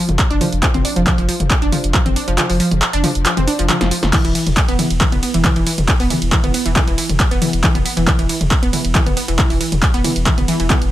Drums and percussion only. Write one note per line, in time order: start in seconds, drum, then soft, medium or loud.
0.09 closed hi-hat soft
0.09 mid tom medium
0.19 kick loud
0.19 clap loud
0.19 closed hi-hat medium
0.31 closed hi-hat medium
0.41 open hi-hat loud
0.41 mid tom medium
0.53 closed hi-hat medium
0.63 kick loud
0.63 clap loud
0.63 closed hi-hat medium
0.74 closed hi-hat medium
0.74 mid tom medium
0.85 open hi-hat loud
0.96 closed hi-hat medium
1.07 kick loud
1.07 clap loud
1.07 closed hi-hat medium
1.07 mid tom medium
1.18 closed hi-hat medium
1.29 open hi-hat loud
1.40 closed hi-hat medium
1.40 mid tom medium
1.51 kick loud
1.51 clap loud
1.51 closed hi-hat medium
1.62 closed hi-hat medium
1.72 open hi-hat loud
1.72 mid tom medium
1.84 closed hi-hat medium
1.94 kick loud
1.94 clap loud
1.94 closed hi-hat medium
2.06 closed hi-hat medium
2.06 mid tom medium
2.16 open hi-hat loud
2.28 closed hi-hat medium
2.38 clap loud
2.38 closed hi-hat medium
2.38 mid tom medium
2.50 open hi-hat medium
2.60 open hi-hat loud
2.71 closed hi-hat medium
2.71 mid tom medium
2.82 clap loud
2.82 closed hi-hat medium
2.93 closed hi-hat medium
3.04 open hi-hat loud
3.04 mid tom medium
3.15 closed hi-hat medium
3.26 clap loud
3.26 closed hi-hat medium
3.37 closed hi-hat medium
3.37 mid tom medium
3.48 open hi-hat loud
3.59 closed hi-hat medium
3.69 clap loud
3.69 closed hi-hat medium
3.69 mid tom medium
3.81 snare medium
3.81 closed hi-hat medium
3.91 open hi-hat loud
4.03 snare loud
4.03 closed hi-hat medium
4.03 mid tom medium
4.13 kick loud
4.13 clap loud
4.13 closed hi-hat medium
4.13 mid tom medium
4.13 crash medium
4.13 ride medium
4.25 closed hi-hat medium
4.25 ride medium
4.35 open hi-hat loud
4.35 ride medium
4.47 closed hi-hat medium
4.47 mid tom medium
4.47 ride medium
4.57 kick loud
4.57 clap loud
4.57 closed hi-hat medium
4.57 ride medium
4.69 closed hi-hat medium
4.69 ride medium
4.79 open hi-hat loud
4.79 mid tom medium
4.79 ride medium
4.90 closed hi-hat medium
4.90 ride medium
5.01 kick loud
5.01 clap loud
5.01 closed hi-hat medium
5.01 ride medium
5.12 closed hi-hat medium
5.12 mid tom medium
5.12 ride medium
5.23 open hi-hat loud
5.23 ride medium
5.34 closed hi-hat medium
5.34 ride medium
5.45 kick loud
5.45 clap loud
5.45 closed hi-hat medium
5.45 mid tom medium
5.45 ride medium
5.56 closed hi-hat medium
5.56 ride medium
5.67 open hi-hat loud
5.67 ride medium
5.78 closed hi-hat medium
5.78 mid tom medium
5.78 ride medium
5.88 kick loud
5.88 clap loud
5.88 closed hi-hat medium
5.88 ride medium
6.00 open hi-hat medium
6.00 ride medium
6.10 open hi-hat loud
6.10 mid tom medium
6.10 ride medium
6.22 closed hi-hat medium
6.22 ride medium
6.32 kick loud
6.32 clap loud
6.32 closed hi-hat medium
6.32 ride medium
6.44 closed hi-hat medium
6.44 mid tom medium
6.44 ride medium
6.54 open hi-hat loud
6.54 ride medium
6.66 closed hi-hat medium
6.66 ride medium
6.76 kick loud
6.76 clap loud
6.76 closed hi-hat medium
6.76 mid tom medium
6.76 ride medium
6.88 closed hi-hat medium
6.88 ride medium
6.98 open hi-hat loud
6.98 ride medium
7.09 closed hi-hat medium
7.09 mid tom medium
7.09 ride medium
7.20 kick loud
7.20 clap loud
7.20 closed hi-hat medium
7.20 ride medium
7.31 closed hi-hat medium
7.31 ride medium
7.42 open hi-hat loud
7.42 mid tom medium
7.42 ride medium
7.53 closed hi-hat medium
7.53 ride medium
7.64 kick loud
7.64 clap loud
7.64 closed hi-hat medium
7.64 ride medium
7.75 closed hi-hat medium
7.75 mid tom medium
7.75 ride medium
7.86 open hi-hat loud
7.86 ride medium
7.97 closed hi-hat medium
7.97 ride medium
8.07 kick loud
8.07 clap loud
8.07 closed hi-hat medium
8.07 mid tom medium
8.07 ride medium
8.19 closed hi-hat medium
8.19 ride medium
8.29 open hi-hat loud
8.29 ride medium
8.41 closed hi-hat medium
8.41 mid tom medium
8.41 ride medium
8.51 kick loud
8.51 clap loud
8.51 closed hi-hat medium
8.51 ride medium
8.63 closed hi-hat medium
8.63 ride medium
8.73 open hi-hat loud
8.73 mid tom medium
8.73 ride medium
8.85 closed hi-hat medium
8.85 ride medium
8.95 kick loud
8.95 clap loud
8.95 closed hi-hat medium
8.95 ride medium
9.07 closed hi-hat medium
9.07 mid tom medium
9.07 ride medium
9.17 open hi-hat loud
9.17 ride medium
9.28 closed hi-hat medium
9.28 ride medium
9.39 kick loud
9.39 clap loud
9.39 closed hi-hat medium
9.39 mid tom medium
9.39 ride medium
9.50 open hi-hat medium
9.50 ride medium
9.61 open hi-hat loud
9.61 ride medium
9.72 closed hi-hat medium
9.72 mid tom medium
9.72 ride medium
9.83 kick loud
9.83 clap loud
9.83 closed hi-hat medium
9.83 ride medium
9.94 closed hi-hat medium
9.94 ride medium
10.04 open hi-hat loud
10.04 mid tom medium
10.04 ride medium
10.16 closed hi-hat medium
10.16 ride medium
10.26 kick loud
10.26 clap loud
10.26 closed hi-hat medium
10.26 ride medium
10.38 closed hi-hat medium
10.38 mid tom medium
10.38 ride medium
10.48 open hi-hat loud
10.48 ride medium
10.60 closed hi-hat medium
10.60 ride medium
10.70 kick loud
10.70 clap loud
10.70 closed hi-hat medium
10.70 mid tom medium
10.70 ride medium
10.82 closed hi-hat medium
10.82 ride medium